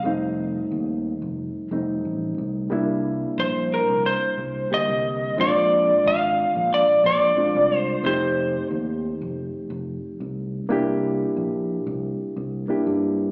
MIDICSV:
0, 0, Header, 1, 4, 480
1, 0, Start_track
1, 0, Tempo, 665188
1, 35, Time_signature, 4, 2, 24, 8
1, 9609, End_track
2, 0, Start_track
2, 0, Title_t, "Electric slide guitar"
2, 0, Program_c, 0, 29
2, 2451, Note_on_c, 0, 72, 76
2, 2691, Note_off_c, 0, 72, 0
2, 2696, Note_on_c, 0, 70, 74
2, 2928, Note_off_c, 0, 70, 0
2, 2931, Note_on_c, 0, 72, 79
2, 3418, Note_off_c, 0, 72, 0
2, 3419, Note_on_c, 0, 75, 90
2, 3899, Note_off_c, 0, 75, 0
2, 3902, Note_on_c, 0, 74, 91
2, 4384, Note_off_c, 0, 74, 0
2, 4384, Note_on_c, 0, 77, 91
2, 4864, Note_on_c, 0, 74, 98
2, 4865, Note_off_c, 0, 77, 0
2, 5075, Note_off_c, 0, 74, 0
2, 5096, Note_on_c, 0, 74, 93
2, 5609, Note_off_c, 0, 74, 0
2, 5609, Note_on_c, 0, 72, 93
2, 5819, Note_off_c, 0, 72, 0
2, 5819, Note_on_c, 0, 72, 80
2, 6260, Note_off_c, 0, 72, 0
2, 9609, End_track
3, 0, Start_track
3, 0, Title_t, "Reed electric piano"
3, 0, Program_c, 1, 4
3, 22, Note_on_c, 1, 55, 60
3, 31, Note_on_c, 1, 57, 63
3, 39, Note_on_c, 1, 60, 60
3, 43, Note_on_c, 1, 63, 71
3, 1205, Note_off_c, 1, 55, 0
3, 1209, Note_off_c, 1, 57, 0
3, 1214, Note_off_c, 1, 60, 0
3, 1215, Note_off_c, 1, 63, 0
3, 1235, Note_on_c, 1, 55, 54
3, 1238, Note_on_c, 1, 57, 50
3, 1245, Note_on_c, 1, 60, 48
3, 1246, Note_on_c, 1, 63, 58
3, 1939, Note_off_c, 1, 55, 0
3, 1947, Note_on_c, 1, 55, 74
3, 1953, Note_on_c, 1, 58, 70
3, 1957, Note_off_c, 1, 57, 0
3, 1960, Note_on_c, 1, 62, 68
3, 1961, Note_off_c, 1, 60, 0
3, 1961, Note_off_c, 1, 63, 0
3, 1967, Note_on_c, 1, 64, 83
3, 3364, Note_off_c, 1, 55, 0
3, 3367, Note_off_c, 1, 58, 0
3, 3370, Note_off_c, 1, 62, 0
3, 3374, Note_off_c, 1, 64, 0
3, 3394, Note_on_c, 1, 55, 50
3, 3398, Note_on_c, 1, 50, 45
3, 3398, Note_on_c, 1, 58, 48
3, 3404, Note_on_c, 1, 67, 55
3, 3872, Note_on_c, 1, 56, 63
3, 3876, Note_off_c, 1, 55, 0
3, 3878, Note_off_c, 1, 50, 0
3, 3878, Note_off_c, 1, 58, 0
3, 3881, Note_off_c, 1, 67, 0
3, 3881, Note_on_c, 1, 60, 60
3, 3886, Note_on_c, 1, 62, 61
3, 3893, Note_on_c, 1, 65, 67
3, 5287, Note_off_c, 1, 56, 0
3, 5291, Note_off_c, 1, 60, 0
3, 5294, Note_off_c, 1, 62, 0
3, 5298, Note_off_c, 1, 65, 0
3, 5312, Note_on_c, 1, 56, 49
3, 5315, Note_on_c, 1, 60, 46
3, 5320, Note_on_c, 1, 62, 46
3, 5321, Note_on_c, 1, 65, 53
3, 5792, Note_off_c, 1, 60, 0
3, 5794, Note_on_c, 1, 57, 62
3, 5795, Note_off_c, 1, 56, 0
3, 5799, Note_off_c, 1, 62, 0
3, 5800, Note_off_c, 1, 65, 0
3, 5800, Note_on_c, 1, 60, 64
3, 5807, Note_on_c, 1, 63, 62
3, 5817, Note_on_c, 1, 67, 68
3, 7688, Note_off_c, 1, 57, 0
3, 7691, Note_off_c, 1, 60, 0
3, 7694, Note_off_c, 1, 63, 0
3, 7699, Note_off_c, 1, 67, 0
3, 7713, Note_on_c, 1, 58, 81
3, 7720, Note_on_c, 1, 62, 73
3, 7729, Note_on_c, 1, 64, 71
3, 7735, Note_on_c, 1, 67, 89
3, 9127, Note_off_c, 1, 58, 0
3, 9130, Note_off_c, 1, 62, 0
3, 9135, Note_off_c, 1, 64, 0
3, 9138, Note_off_c, 1, 67, 0
3, 9152, Note_on_c, 1, 58, 59
3, 9158, Note_on_c, 1, 62, 54
3, 9163, Note_on_c, 1, 64, 55
3, 9165, Note_on_c, 1, 67, 61
3, 9609, Note_off_c, 1, 58, 0
3, 9609, Note_off_c, 1, 62, 0
3, 9609, Note_off_c, 1, 64, 0
3, 9609, Note_off_c, 1, 67, 0
3, 9609, End_track
4, 0, Start_track
4, 0, Title_t, "Fingered electric bass"
4, 0, Program_c, 2, 33
4, 34, Note_on_c, 2, 29, 97
4, 418, Note_off_c, 2, 29, 0
4, 516, Note_on_c, 2, 39, 85
4, 806, Note_off_c, 2, 39, 0
4, 879, Note_on_c, 2, 29, 85
4, 1071, Note_off_c, 2, 29, 0
4, 1235, Note_on_c, 2, 29, 87
4, 1427, Note_off_c, 2, 29, 0
4, 1478, Note_on_c, 2, 33, 74
4, 1693, Note_off_c, 2, 33, 0
4, 1718, Note_on_c, 2, 36, 79
4, 1933, Note_off_c, 2, 36, 0
4, 1959, Note_on_c, 2, 36, 102
4, 2341, Note_off_c, 2, 36, 0
4, 2436, Note_on_c, 2, 34, 88
4, 2727, Note_off_c, 2, 34, 0
4, 2804, Note_on_c, 2, 36, 87
4, 2994, Note_off_c, 2, 36, 0
4, 3156, Note_on_c, 2, 36, 86
4, 3348, Note_off_c, 2, 36, 0
4, 3523, Note_on_c, 2, 36, 88
4, 3807, Note_off_c, 2, 36, 0
4, 3882, Note_on_c, 2, 34, 103
4, 4264, Note_off_c, 2, 34, 0
4, 4359, Note_on_c, 2, 32, 94
4, 4650, Note_off_c, 2, 32, 0
4, 4729, Note_on_c, 2, 34, 92
4, 4918, Note_off_c, 2, 34, 0
4, 5080, Note_on_c, 2, 34, 94
4, 5271, Note_off_c, 2, 34, 0
4, 5449, Note_on_c, 2, 36, 92
4, 5731, Note_off_c, 2, 36, 0
4, 5799, Note_on_c, 2, 29, 112
4, 6182, Note_off_c, 2, 29, 0
4, 6284, Note_on_c, 2, 39, 83
4, 6573, Note_off_c, 2, 39, 0
4, 6649, Note_on_c, 2, 29, 97
4, 6839, Note_off_c, 2, 29, 0
4, 6999, Note_on_c, 2, 29, 95
4, 7191, Note_off_c, 2, 29, 0
4, 7363, Note_on_c, 2, 36, 90
4, 7647, Note_off_c, 2, 36, 0
4, 7723, Note_on_c, 2, 36, 111
4, 8105, Note_off_c, 2, 36, 0
4, 8202, Note_on_c, 2, 34, 88
4, 8491, Note_off_c, 2, 34, 0
4, 8562, Note_on_c, 2, 36, 93
4, 8754, Note_off_c, 2, 36, 0
4, 8923, Note_on_c, 2, 36, 92
4, 9112, Note_off_c, 2, 36, 0
4, 9285, Note_on_c, 2, 43, 91
4, 9568, Note_off_c, 2, 43, 0
4, 9609, End_track
0, 0, End_of_file